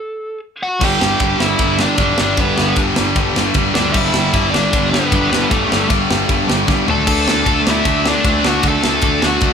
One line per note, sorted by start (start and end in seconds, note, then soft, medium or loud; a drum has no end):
0.00 0.40 A4 medium
0.00 0.38 A5 medium
0.63 0.82 F#4 medium
0.63 0.83 F#5 loud
0.80 0.95 G1 loud
0.80 1.00 G2 medium
0.80 1.00 D3 medium
0.80 1.01 G3 loud
0.80 kick loud
0.80 crash loud
0.85 1.39 G4 medium
0.85 1.41 G5 loud
1.00 1.15 G1 medium
1.00 1.20 G2 medium
1.00 1.20 D3 loud
1.00 1.21 G3 medium
1.00 snare loud
1.20 1.34 G1 loud
1.20 1.38 G2 medium
1.20 1.38 D3 loud
1.20 1.39 G3 loud
1.20 kick loud
1.20 ride medium
1.38 1.54 G1 medium
1.38 1.58 G2 medium
1.38 1.58 D3 loud
1.38 1.59 G3 loud
1.38 1.77 E4 medium
1.38 1.78 E5 loud
1.38 snare loud
1.59 1.85 G1 loud
1.59 1.77 G2 medium
1.59 1.77 D3 loud
1.59 1.78 G3 loud
1.59 kick loud
1.59 ride medium
1.78 1.96 G2 loud
1.78 1.95 D3 loud
1.78 1.97 G3 loud
1.78 2.17 D4 medium
1.78 snare loud
1.82 2.20 D5 loud
1.96 2.12 G1 medium
1.96 2.16 G2 loud
1.96 2.16 D3 medium
1.96 2.17 G3 medium
1.96 kick loud
1.96 ride medium
2.17 2.33 G1 medium
2.17 2.35 G2 medium
2.17 2.35 D3 medium
2.17 2.37 G3 loud
2.17 2.38 D4 medium
2.17 snare loud
2.21 2.40 D5 medium
2.35 2.51 G1 medium
2.35 2.56 G2 medium
2.35 2.55 D3 loud
2.35 2.57 G3 loud
2.35 2.75 B3 medium
2.35 kick loud
2.35 ride medium
2.40 2.79 B4 medium
2.56 2.72 G1 medium
2.56 2.77 G2 medium
2.56 2.77 D3 medium
2.56 2.78 G3 medium
2.56 snare loud
2.76 2.90 G1 medium
2.76 2.97 G2 medium
2.76 2.96 D3 medium
2.76 2.98 G3 loud
2.76 kick loud
2.76 ride medium
2.96 3.12 G1 medium
2.96 3.16 G2 medium
2.96 3.15 D3 medium
2.96 3.16 G3 loud
2.96 snare loud
3.16 3.29 G1 loud
3.16 3.36 G2 medium
3.16 3.36 D3 loud
3.16 3.37 G3 medium
3.16 kick loud
3.16 ride medium
3.36 3.50 G1 loud
3.36 3.56 G2 medium
3.36 3.56 D3 loud
3.36 3.57 G3 loud
3.36 snare loud
3.54 3.68 G1 medium
3.54 3.76 G2 medium
3.54 3.76 D3 loud
3.54 3.78 G3 loud
3.54 kick loud
3.54 ride medium
3.75 3.89 D2 medium
3.75 3.96 G2 medium
3.75 3.95 D3 medium
3.75 3.97 G3 loud
3.75 3.94 D4 medium
3.75 3.96 D5 loud
3.75 snare loud
3.92 4.08 G1 loud
3.92 4.48 E4 medium
3.92 4.54 E5 loud
3.92 kick loud
3.92 crash loud
3.96 4.13 G2 loud
3.96 4.13 D3 loud
3.96 4.14 G3 loud
4.14 4.28 G1 medium
4.14 4.33 G2 medium
4.14 4.33 D3 medium
4.14 4.34 G3 loud
4.14 snare loud
4.34 4.47 G1 loud
4.34 4.54 G2 medium
4.34 4.54 D3 medium
4.34 4.55 G3 loud
4.34 kick loud
4.34 ride medium
4.50 4.90 D4 medium
4.50 4.90 D5 loud
4.54 4.67 G1 medium
4.54 4.73 G2 medium
4.54 4.74 D3 loud
4.54 4.74 G3 loud
4.54 snare loud
4.73 4.99 G1 loud
4.73 4.91 G2 loud
4.73 4.91 D3 medium
4.73 4.92 G3 loud
4.73 kick loud
4.73 ride medium
4.91 5.11 G2 medium
4.91 5.11 D3 loud
4.91 5.12 G3 loud
4.91 5.30 B3 medium
4.91 5.29 B4 loud
4.91 snare loud
5.12 5.25 G1 medium
5.12 5.29 G2 medium
5.12 5.30 D3 loud
5.12 5.30 G3 loud
5.12 kick loud
5.12 ride medium
5.30 5.45 G1 medium
5.30 5.49 G2 medium
5.30 5.50 D3 loud
5.30 5.50 G3 loud
5.30 5.51 B3 medium
5.30 5.52 B4 medium
5.30 snare loud
5.50 5.64 G1 loud
5.50 5.68 G2 medium
5.50 5.68 D3 loud
5.50 5.69 G3 loud
5.50 5.88 A3 medium
5.50 5.87 A4 medium
5.50 kick loud
5.50 ride medium
5.69 5.88 G2 medium
5.69 5.89 D3 medium
5.69 5.89 G3 medium
5.69 snare loud
5.73 5.85 G1 medium
5.89 6.04 G1 medium
5.89 6.08 G2 medium
5.89 6.09 D3 medium
5.89 6.09 G3 loud
5.89 kick loud
5.89 ride medium
6.09 6.24 G1 loud
6.09 6.28 G2 medium
6.09 6.29 D3 medium
6.09 6.29 G3 loud
6.09 snare loud
6.29 6.42 G1 loud
6.29 6.46 G2 medium
6.29 6.46 D3 medium
6.29 6.47 G3 medium
6.29 kick loud
6.29 ride medium
6.47 6.63 G1 medium
6.47 6.65 G2 loud
6.47 6.66 D3 medium
6.47 6.66 G3 loud
6.47 snare loud
6.67 6.82 G1 loud
6.67 6.86 G2 medium
6.67 6.86 D3 medium
6.67 6.87 G3 loud
6.67 kick loud
6.67 snare medium
6.87 7.01 D2 medium
6.87 7.07 D3 loud
6.87 7.07 A3 loud
6.87 7.08 D4 loud
6.87 7.06 A4 medium
6.87 7.06 A5 loud
6.87 floor tom loud
7.07 7.21 D2 medium
7.07 7.27 D3 medium
7.07 7.27 A3 loud
7.07 7.28 D4 loud
7.07 7.62 A4 medium
7.07 7.62 A5 loud
7.07 kick loud
7.07 crash loud
7.27 7.40 D2 medium
7.27 7.46 D3 medium
7.27 7.47 A3 medium
7.27 7.47 D4 loud
7.27 snare loud
7.46 7.59 D2 medium
7.46 7.66 D3 medium
7.46 7.66 A3 medium
7.46 7.66 D4 loud
7.46 kick loud
7.46 ride medium
7.66 7.80 D2 medium
7.66 7.84 D3 medium
7.66 7.85 A3 medium
7.66 7.85 D4 loud
7.66 8.05 E4 medium
7.66 snare loud
7.71 8.09 E5 loud
7.85 8.12 D2 loud
7.85 8.05 D3 medium
7.85 8.06 A3 medium
7.85 8.06 D4 loud
7.85 kick loud
7.85 ride medium
8.06 8.23 D3 loud
8.06 8.23 A3 medium
8.06 8.24 D4 loud
8.06 8.44 D4 medium
8.06 8.48 D5 medium
8.06 snare loud
8.24 8.38 D2 loud
8.24 8.43 D3 medium
8.24 8.44 A3 medium
8.24 8.44 D4 loud
8.24 kick loud
8.24 ride medium
8.44 8.58 D2 medium
8.44 8.63 D3 loud
8.44 8.63 A3 medium
8.44 8.64 D4 loud
8.44 8.64 F#4 medium
8.44 8.64 F#5 loud
8.44 snare loud
8.63 8.77 D2 medium
8.63 8.82 D3 medium
8.63 8.83 A3 loud
8.63 8.83 D4 loud
8.63 kick loud
8.63 ride medium
8.68 9.21 A4 medium
8.68 9.28 A5 loud
8.83 8.98 D2 loud
8.83 9.02 D3 medium
8.83 9.02 A3 medium
8.83 9.03 D4 medium
8.83 snare loud
9.02 9.16 D2 loud
9.02 9.21 D3 medium
9.02 9.21 A3 medium
9.02 9.22 D4 loud
9.02 kick loud
9.02 ride medium
9.22 9.36 D2 medium
9.22 9.41 D3 medium
9.22 9.42 A3 loud
9.22 9.43 D4 loud
9.22 9.53 F#4 medium
9.22 9.53 F#5 medium
9.22 snare loud
9.41 9.53 D2 loud
9.41 9.53 D3 medium
9.41 9.53 A3 medium
9.41 9.53 D4 loud
9.41 kick loud
9.41 ride medium